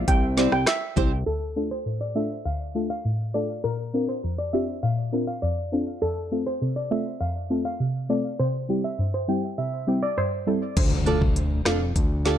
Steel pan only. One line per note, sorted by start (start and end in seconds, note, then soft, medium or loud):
0.08 0.17 G5 medium
0.52 0.61 G5 medium
0.67 1.09 E5 medium
1.26 1.45 A4 medium
1.71 1.80 C5 medium
2.01 2.10 D5 medium
2.16 2.25 E5 medium
2.45 2.54 F5 medium
2.90 2.99 F5 medium
3.34 3.43 D5 medium
3.64 3.82 A#4 medium
4.09 4.18 C5 medium
4.38 4.47 D5 medium
4.53 4.62 E5 medium
4.83 4.92 F5 medium
5.27 5.37 F5 medium
5.42 5.84 D5 medium
6.02 6.20 A4 loud
6.47 6.56 C5 medium
6.76 6.85 D5 medium
6.91 7.00 E5 medium
7.21 7.30 F5 medium
7.65 7.74 F5 medium
8.10 8.19 D5 medium
8.40 8.58 C5 loud
8.84 8.93 E5 medium
9.14 9.23 C5 medium
9.29 9.38 G5 medium
9.58 9.67 E5 medium
10.03 10.12 D5 medium
10.18 10.60 C5 medium